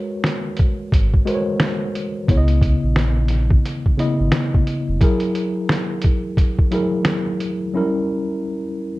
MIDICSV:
0, 0, Header, 1, 4, 480
1, 0, Start_track
1, 0, Tempo, 681818
1, 1606, Time_signature, 4, 2, 24, 8
1, 6332, End_track
2, 0, Start_track
2, 0, Title_t, "Tine electric piano"
2, 0, Program_c, 0, 4
2, 0, Control_c, 0, 64, 127
2, 0, Note_on_c, 0, 56, 89
2, 0, Note_on_c, 0, 66, 92
2, 0, Note_on_c, 0, 70, 82
2, 0, Note_on_c, 0, 71, 84
2, 0, Note_on_c, 0, 73, 99
2, 268, Note_off_c, 0, 56, 0
2, 272, Note_off_c, 0, 66, 0
2, 274, Note_off_c, 0, 70, 0
2, 276, Note_off_c, 0, 71, 0
2, 280, Note_off_c, 0, 73, 0
2, 882, Note_on_c, 0, 56, 79
2, 887, Note_on_c, 0, 66, 71
2, 893, Note_on_c, 0, 70, 72
2, 899, Note_on_c, 0, 71, 71
2, 903, Note_on_c, 0, 72, 64
2, 951, Note_off_c, 0, 72, 0
2, 952, Note_on_c, 0, 73, 86
2, 1515, Note_off_c, 0, 56, 0
2, 1518, Note_off_c, 0, 66, 0
2, 1521, Note_off_c, 0, 70, 0
2, 1524, Note_off_c, 0, 71, 0
2, 1550, Note_off_c, 0, 73, 0
2, 1602, Note_on_c, 0, 49, 85
2, 1610, Note_on_c, 0, 59, 73
2, 1614, Control_c, 0, 64, 0
2, 1616, Note_on_c, 0, 64, 68
2, 1625, Note_on_c, 0, 73, 77
2, 1671, Note_on_c, 0, 75, 87
2, 1672, Note_off_c, 0, 73, 0
2, 1735, Control_c, 0, 64, 127
2, 2429, Note_off_c, 0, 49, 0
2, 2433, Note_off_c, 0, 59, 0
2, 2436, Note_off_c, 0, 64, 0
2, 2464, Note_off_c, 0, 75, 0
2, 2795, Note_on_c, 0, 49, 74
2, 2804, Note_on_c, 0, 59, 62
2, 2811, Note_on_c, 0, 64, 81
2, 2817, Note_on_c, 0, 75, 89
2, 3432, Note_off_c, 0, 49, 0
2, 3437, Note_off_c, 0, 59, 0
2, 3440, Note_off_c, 0, 64, 0
2, 3443, Note_off_c, 0, 75, 0
2, 3523, Note_on_c, 0, 54, 76
2, 3530, Note_on_c, 0, 64, 74
2, 3536, Control_c, 0, 64, 0
2, 3539, Note_on_c, 0, 68, 85
2, 3545, Note_on_c, 0, 70, 99
2, 3647, Control_c, 0, 64, 127
2, 4350, Note_off_c, 0, 54, 0
2, 4353, Note_off_c, 0, 64, 0
2, 4358, Note_off_c, 0, 68, 0
2, 4361, Note_off_c, 0, 70, 0
2, 4725, Note_on_c, 0, 54, 73
2, 4731, Note_on_c, 0, 64, 82
2, 4738, Note_on_c, 0, 68, 70
2, 4748, Note_on_c, 0, 70, 90
2, 5357, Note_off_c, 0, 54, 0
2, 5360, Note_off_c, 0, 64, 0
2, 5363, Note_off_c, 0, 68, 0
2, 5368, Note_off_c, 0, 70, 0
2, 5445, Note_on_c, 0, 54, 67
2, 5452, Note_on_c, 0, 61, 81
2, 5454, Control_c, 0, 64, 0
2, 5459, Note_on_c, 0, 64, 79
2, 5469, Note_on_c, 0, 70, 103
2, 5492, Note_on_c, 0, 55, 86
2, 5502, Note_off_c, 0, 54, 0
2, 5580, Control_c, 0, 64, 127
2, 6274, Note_off_c, 0, 61, 0
2, 6278, Note_off_c, 0, 64, 0
2, 6283, Note_off_c, 0, 70, 0
2, 6294, Note_off_c, 0, 55, 0
2, 6332, End_track
3, 0, Start_track
3, 0, Title_t, "Sub bass"
3, 0, Program_c, 1, 38
3, 652, Note_on_c, 1, 32, 101
3, 854, Note_off_c, 1, 32, 0
3, 1610, Note_on_c, 1, 37, 113
3, 1940, Note_off_c, 1, 37, 0
3, 1996, Note_on_c, 1, 34, 81
3, 2538, Note_off_c, 1, 34, 0
3, 2957, Note_on_c, 1, 32, 88
3, 3034, Note_off_c, 1, 32, 0
3, 3438, Note_on_c, 1, 29, 92
3, 3514, Note_off_c, 1, 29, 0
3, 6332, End_track
4, 0, Start_track
4, 0, Title_t, "Drums"
4, 167, Note_on_c, 9, 26, 72
4, 167, Note_on_c, 9, 38, 94
4, 187, Note_on_c, 9, 42, 74
4, 238, Note_off_c, 9, 26, 0
4, 238, Note_off_c, 9, 38, 0
4, 257, Note_off_c, 9, 42, 0
4, 399, Note_on_c, 9, 42, 69
4, 418, Note_on_c, 9, 36, 92
4, 469, Note_off_c, 9, 42, 0
4, 488, Note_off_c, 9, 36, 0
4, 650, Note_on_c, 9, 36, 103
4, 659, Note_on_c, 9, 42, 82
4, 720, Note_off_c, 9, 36, 0
4, 729, Note_off_c, 9, 42, 0
4, 800, Note_on_c, 9, 36, 78
4, 871, Note_off_c, 9, 36, 0
4, 896, Note_on_c, 9, 42, 67
4, 966, Note_off_c, 9, 42, 0
4, 1124, Note_on_c, 9, 26, 88
4, 1124, Note_on_c, 9, 38, 113
4, 1125, Note_on_c, 9, 42, 77
4, 1195, Note_off_c, 9, 26, 0
4, 1195, Note_off_c, 9, 38, 0
4, 1196, Note_off_c, 9, 42, 0
4, 1375, Note_on_c, 9, 42, 64
4, 1446, Note_off_c, 9, 42, 0
4, 1608, Note_on_c, 9, 36, 101
4, 1612, Note_on_c, 9, 42, 84
4, 1679, Note_off_c, 9, 36, 0
4, 1683, Note_off_c, 9, 42, 0
4, 1745, Note_on_c, 9, 42, 46
4, 1816, Note_off_c, 9, 42, 0
4, 1841, Note_on_c, 9, 36, 81
4, 1848, Note_on_c, 9, 42, 64
4, 1911, Note_off_c, 9, 36, 0
4, 1919, Note_off_c, 9, 42, 0
4, 2084, Note_on_c, 9, 26, 86
4, 2084, Note_on_c, 9, 38, 102
4, 2103, Note_on_c, 9, 42, 81
4, 2154, Note_off_c, 9, 26, 0
4, 2154, Note_off_c, 9, 38, 0
4, 2173, Note_off_c, 9, 42, 0
4, 2312, Note_on_c, 9, 42, 63
4, 2326, Note_on_c, 9, 38, 33
4, 2382, Note_off_c, 9, 42, 0
4, 2397, Note_off_c, 9, 38, 0
4, 2468, Note_on_c, 9, 36, 103
4, 2538, Note_off_c, 9, 36, 0
4, 2573, Note_on_c, 9, 42, 92
4, 2644, Note_off_c, 9, 42, 0
4, 2716, Note_on_c, 9, 36, 75
4, 2787, Note_off_c, 9, 36, 0
4, 2810, Note_on_c, 9, 42, 72
4, 2881, Note_off_c, 9, 42, 0
4, 3039, Note_on_c, 9, 26, 79
4, 3040, Note_on_c, 9, 38, 107
4, 3040, Note_on_c, 9, 42, 81
4, 3110, Note_off_c, 9, 26, 0
4, 3110, Note_off_c, 9, 38, 0
4, 3111, Note_off_c, 9, 42, 0
4, 3199, Note_on_c, 9, 36, 82
4, 3269, Note_off_c, 9, 36, 0
4, 3287, Note_on_c, 9, 42, 62
4, 3358, Note_off_c, 9, 42, 0
4, 3525, Note_on_c, 9, 36, 116
4, 3528, Note_on_c, 9, 42, 91
4, 3596, Note_off_c, 9, 36, 0
4, 3599, Note_off_c, 9, 42, 0
4, 3661, Note_on_c, 9, 42, 48
4, 3731, Note_off_c, 9, 42, 0
4, 3767, Note_on_c, 9, 42, 68
4, 3837, Note_off_c, 9, 42, 0
4, 4007, Note_on_c, 9, 26, 90
4, 4007, Note_on_c, 9, 38, 97
4, 4027, Note_on_c, 9, 42, 86
4, 4078, Note_off_c, 9, 26, 0
4, 4078, Note_off_c, 9, 38, 0
4, 4097, Note_off_c, 9, 42, 0
4, 4235, Note_on_c, 9, 42, 71
4, 4254, Note_on_c, 9, 36, 87
4, 4306, Note_off_c, 9, 42, 0
4, 4325, Note_off_c, 9, 36, 0
4, 4486, Note_on_c, 9, 36, 94
4, 4493, Note_on_c, 9, 42, 91
4, 4556, Note_off_c, 9, 36, 0
4, 4563, Note_off_c, 9, 42, 0
4, 4636, Note_on_c, 9, 36, 82
4, 4707, Note_off_c, 9, 36, 0
4, 4729, Note_on_c, 9, 42, 76
4, 4799, Note_off_c, 9, 42, 0
4, 4962, Note_on_c, 9, 26, 88
4, 4962, Note_on_c, 9, 38, 109
4, 4963, Note_on_c, 9, 42, 77
4, 5032, Note_off_c, 9, 26, 0
4, 5032, Note_off_c, 9, 38, 0
4, 5033, Note_off_c, 9, 42, 0
4, 5212, Note_on_c, 9, 42, 64
4, 5282, Note_off_c, 9, 42, 0
4, 6332, End_track
0, 0, End_of_file